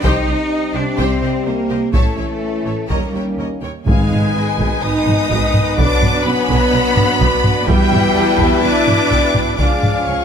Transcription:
0.01 C2 C3 G3 C4 D#4 G4 C5 D#5 G5, taiko
0.26 C2 G4 C5 D#5
0.74 C2 D4 G4 C5 D5 D#5
0.98 C2 C4 G4 C5 G5, taiko
1.22 C2 G4 C5 D#5
1.46 C2 A#3 D#4 G4 A#4 C5
1.69 C2 G4 C5 D#5
1.92 A1 E3 A3 C#4 E4 A4 C#5 E5 A5, taiko
2.17 A1 C#5 E5
2.64 A1 C#5 E5
2.89 D#2 D#3 G3 A#3 C#4 G4 A#4 C#5 D#5 A#5, taiko
3.13 D#2 A#4 C#5 G5
3.37 D#2 A#4 C#5 D#5
3.62 D#2 A#4 C#5 G5
3.86 G#1 G#2 D#3 G#3 B3 D#4 G#4 B4 F5 G#5, taiko
4.10 G#1, taiko low-mid
4.34 G#1 D#5
4.58 G#1, taiko
4.82 G#1 D#4 B4 D#5 D#6
5.06 G#1, taiko low-mid
5.30 G#1, taiko
5.55 taiko low-mid
5.76 B1 B2 F#3 D4 D5 F#5 D6, taiko
6.01 B1, taiko low-mid
6.25 B1 B3 B4 G#5 B5
6.48 B1, taiko
6.72 B1 F#5
6.96 B1, taiko low-mid
7.20 B1 D5, taiko
7.44 taiko low-mid
7.67 E2 E3 G3 B3 E4 G4 B4 E5 G5, taiko
7.91 E2, taiko low-mid
8.14 E2 A5
8.38 E2, taiko
8.62 E2 D4 D5 D6
8.86 E2, taiko low-mid
9.10 E2 G5, taiko
9.35 taiko low-mid
9.57 C#2 C#3 F3 G#3 D4 F4 G#4 D5 F5 G#5 D6, taiko
9.62 G#4
9.82 C#2, taiko low-mid
10.06 C#2 C#4 C#5 C#6

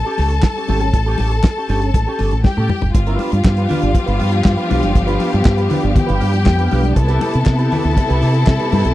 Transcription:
Already playing: A4 A5
0.05 C#4 G4 A4
0.18 C#2 C#4 G4 A4, open hi-hat, muted conga
0.30 muted clean electric guitar stroke, closed hi-hat
0.43 muted clean electric guitar stroke, kick, snare, clap, closed hi-hat, high conga
0.56 C#4 G4 A4
0.68 G#1 C#4 G4 A4, open hi-hat, high conga
0.80 muted clean electric guitar stroke, closed hi-hat, high conga
0.94 A1, muted clean electric guitar stroke, kick, closed hi-hat, muted conga
1.06 C#4 G4 A4
1.18 A1 C#4 G4 A4, open hi-hat, muted conga
1.31 muted clean electric guitar stroke, closed hi-hat
1.43 muted clean electric guitar stroke, kick, snare, clap, closed hi-hat, high conga
1.57 C#4 G4 A4
1.69 G1 C#4 G4 A4, open hi-hat
1.81 muted clean electric guitar stroke, closed hi-hat
1.94 A1, muted clean electric guitar stroke, kick, closed hi-hat, muted conga
2.07 C#4 G4 A4
2.19 G1 C#4 G4 A4, open hi-hat, muted conga
2.31 A1, muted clean electric guitar stroke, closed hi-hat
2.44 G4 G5, muted clean electric guitar stroke, kick, snare, high conga
2.57 A2 C#4 G4 A4, high tom
2.69 muted clean electric guitar stroke, mid tom, high conga
2.81 F#1, muted clean electric guitar stroke, floor tom, high conga
2.94 G1 F3 B3 F4 G4 F5, muted clean electric guitar stroke, kick, closed hi-hat, muted conga
3.07 D4 F4 B4, closed hi-hat
3.19 D4 F4 B4, open hi-hat, muted conga
3.32 G2, muted clean electric guitar stroke, closed hi-hat
3.44 G2, muted clean electric guitar stroke, kick, snare, clap, high conga
3.57 D4 F4 B4, closed hi-hat
3.69 D4 F4 B4, open hi-hat, low conga
3.81 G1, muted clean electric guitar stroke, closed hi-hat
3.94 muted clean electric guitar stroke, kick, closed hi-hat, muted conga
4.06 G1 D4 F4 B4, closed hi-hat
4.19 G2 D4 F4 B4, open hi-hat
4.32 muted clean electric guitar stroke, closed hi-hat
4.44 G2, muted clean electric guitar stroke, kick, snare, clap, high conga
4.57 D4 F4 B4, closed hi-hat
4.69 B1 D4 F4 B4, open hi-hat, high conga
4.82 F#1, muted clean electric guitar stroke, closed hi-hat, high conga
4.95 G1, muted clean electric guitar stroke, kick, closed hi-hat, muted conga
5.07 D4 F4 B4, closed hi-hat
5.20 D4 F4 B4, open hi-hat, muted conga
5.33 G2, muted clean electric guitar stroke, closed hi-hat
5.45 G2, muted clean electric guitar stroke, kick, snare, clap, high conga
5.57 D4 F4 B4, closed hi-hat
5.69 D4 F4 B4, open hi-hat, low conga
5.82 G1, muted clean electric guitar stroke, closed hi-hat
5.95 G4 G5, muted clean electric guitar stroke, kick, closed hi-hat, muted conga, low conga
6.07 G1 D4 F4 B4, closed hi-hat
6.20 G2 D4 F4 B4, open hi-hat, muted conga
6.32 muted clean electric guitar stroke, closed hi-hat
6.46 F2, muted clean electric guitar stroke, kick, snare, clap, high conga
6.58 D4 F4 B4, closed hi-hat
6.71 B1 D4 F4 B4, open hi-hat, high conga
6.83 muted clean electric guitar stroke, closed hi-hat, high conga
6.96 C2 C3 E4 A4 A5, muted clean electric guitar stroke, kick, closed hi-hat, muted conga
7.08 E4 G4 B4, closed hi-hat
7.21 E4 G4 B4, open hi-hat, muted conga
7.33 C3, muted clean electric guitar stroke, closed hi-hat
7.46 C3, muted clean electric guitar stroke, kick, snare, clap, high conga
7.58 E4 G4 B4, closed hi-hat
7.71 E4 G4 B4, open hi-hat, low conga
7.84 D2, muted clean electric guitar stroke, closed hi-hat
7.97 muted clean electric guitar stroke, kick, closed hi-hat, muted conga
8.09 C2 E4 G4 B4, closed hi-hat
8.21 C3 E4 G4 B4, open hi-hat
8.34 muted clean electric guitar stroke, closed hi-hat
8.46 C3, muted clean electric guitar stroke, kick, snare, clap, high conga
8.59 E4 G4 B4, closed hi-hat
8.72 G2 E4 G4 B4, open hi-hat, high conga
8.85 B1, muted clean electric guitar stroke, closed hi-hat, high conga

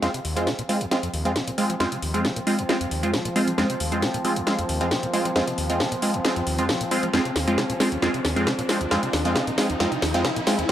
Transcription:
0.02 F2 F3 G#3 C4 F4, snare, closed hi-hat, riser
0.14 C3, closed hi-hat
0.25 D#2, open hi-hat
0.36 F2 G#3 C4 F4, closed hi-hat
0.47 C3, snare, closed hi-hat
0.59 A#2, closed hi-hat
0.69 G#3 C4 F4, open hi-hat
0.81 D#2, closed hi-hat
0.91 G#3 C4 F4, snare, closed hi-hat
1.03 F2, closed hi-hat
1.14 D#2, open hi-hat
1.25 F2 G#3 C4 F4, closed hi-hat
1.36 C3, snare, closed hi-hat
1.48 A#2, closed hi-hat
1.58 G#3 C4 F4, open hi-hat
1.70 F3, closed hi-hat
1.80 F2 G#3 C4 F4, snare, closed hi-hat
1.92 C3, closed hi-hat
2.02 D#2, open hi-hat
2.14 F2 G#3 C4 F4, closed hi-hat
2.25 C3, snare, closed hi-hat
2.36 A#2, closed hi-hat
2.47 G#3 C4 F4, open hi-hat
2.59 D#2, closed hi-hat
2.69 G#3 C4 F4, snare, closed hi-hat
2.81 F2, closed hi-hat
2.91 D#2, open hi-hat
3.03 F2 G#3 C4 F4, closed hi-hat
3.13 C3, snare, closed hi-hat
3.25 A#2, closed hi-hat
3.36 G#3 C4 F4, open hi-hat
3.47 F3, closed hi-hat
3.58 F2 G#3 C4 F4, snare, closed hi-hat
3.70 C3, closed hi-hat
3.80 D#2, open hi-hat
3.92 F2 G#3 C4 F4, closed hi-hat
4.02 C3, snare, closed hi-hat
4.14 A#2, closed hi-hat
4.24 G#3 C4 F4, open hi-hat
4.36 D#2, closed hi-hat
4.47 G#3 C4 F4, snare, closed hi-hat
4.59 F2, closed hi-hat
4.69 D#2, open hi-hat
4.81 F2 G#3 C4 F4, closed hi-hat
4.91 C3, snare, closed hi-hat
5.03 A#2, closed hi-hat
5.14 G#3 C4 F4, open hi-hat
5.25 F3, closed hi-hat
5.36 F2 G#3 C4 F4, snare, closed hi-hat
5.47 C3, closed hi-hat
5.58 D#2, open hi-hat
5.70 F2 G#3 C4 F4, closed hi-hat
5.80 C3, snare, closed hi-hat
5.92 A#2, closed hi-hat
6.02 G#3 C4 F4, open hi-hat
6.14 D#2, closed hi-hat
6.24 G#3 C4 F4, snare, closed hi-hat
6.36 F2, closed hi-hat
6.47 D#2, open hi-hat
6.58 F2 G#3 C4 F4, closed hi-hat
6.69 C3, snare, closed hi-hat
6.81 A#2, closed hi-hat
6.91 G#3 C4 F4, open hi-hat
7.03 F3, closed hi-hat
7.13 F2 G#3 C4 F4, snare, closed hi-hat
7.25 C3, closed hi-hat
7.36 D#2, snare, open hi-hat
7.47 F2 G#3 C4 F4, closed hi-hat
7.58 C3, snare, closed hi-hat
7.70 A#2, closed hi-hat
7.80 G#3 C4 F4, snare, open hi-hat
7.92 D#2, closed hi-hat
8.02 F2 G#3 C4 F4, snare, closed hi-hat
8.14 C3, closed hi-hat
8.25 D#2, snare, open hi-hat
8.36 F2 G#3 C4 F4, closed hi-hat
8.47 C3, snare, closed hi-hat
8.59 A#2, closed hi-hat
8.69 G#3 C4 F4, snare, open hi-hat
8.81 D#2, closed hi-hat
8.91 F2 G#3 C4 F4, snare, closed hi-hat
9.03 C3, closed hi-hat
9.13 D#2, snare, open hi-hat
9.25 F2 G#3 C4 F4, closed hi-hat
9.36 C3, snare, closed hi-hat
9.47 A#2, closed hi-hat
9.58 G#3 C4 F4, snare, open hi-hat
9.70 D#2, closed hi-hat
9.80 F2 G#3 C4 F4, snare, closed hi-hat
9.92 C3, closed hi-hat
10.02 D#2, snare, open hi-hat
10.14 F2 G#3 C4 F4, closed hi-hat
10.25 C3, snare, closed hi-hat
10.36 A#2, closed hi-hat
10.47 G#3 C4 F4, snare, open hi-hat
10.59 D#2, closed hi-hat

